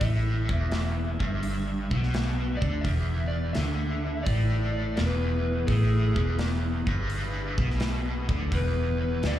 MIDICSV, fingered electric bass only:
0, 0, Header, 1, 2, 480
1, 0, Start_track
1, 0, Tempo, 710059
1, 9, Time_signature, 4, 2, 24, 8
1, 6348, End_track
2, 0, Start_track
2, 0, Title_t, "Fingered electric bass"
2, 0, Program_c, 0, 33
2, 9, Note_on_c, 0, 33, 90
2, 313, Note_off_c, 0, 33, 0
2, 330, Note_on_c, 0, 28, 84
2, 786, Note_off_c, 0, 28, 0
2, 817, Note_on_c, 0, 31, 84
2, 1270, Note_off_c, 0, 31, 0
2, 1293, Note_on_c, 0, 35, 86
2, 1747, Note_off_c, 0, 35, 0
2, 1772, Note_on_c, 0, 38, 98
2, 1917, Note_off_c, 0, 38, 0
2, 1922, Note_on_c, 0, 28, 79
2, 2378, Note_off_c, 0, 28, 0
2, 2413, Note_on_c, 0, 38, 81
2, 2863, Note_off_c, 0, 38, 0
2, 2887, Note_on_c, 0, 33, 79
2, 3340, Note_off_c, 0, 33, 0
2, 3369, Note_on_c, 0, 28, 89
2, 3821, Note_off_c, 0, 28, 0
2, 3842, Note_on_c, 0, 33, 90
2, 4147, Note_off_c, 0, 33, 0
2, 4166, Note_on_c, 0, 28, 81
2, 4622, Note_off_c, 0, 28, 0
2, 4645, Note_on_c, 0, 31, 89
2, 5101, Note_off_c, 0, 31, 0
2, 5127, Note_on_c, 0, 35, 82
2, 5582, Note_off_c, 0, 35, 0
2, 5607, Note_on_c, 0, 38, 92
2, 5752, Note_off_c, 0, 38, 0
2, 5760, Note_on_c, 0, 28, 86
2, 6217, Note_off_c, 0, 28, 0
2, 6242, Note_on_c, 0, 38, 76
2, 6348, Note_off_c, 0, 38, 0
2, 6348, End_track
0, 0, End_of_file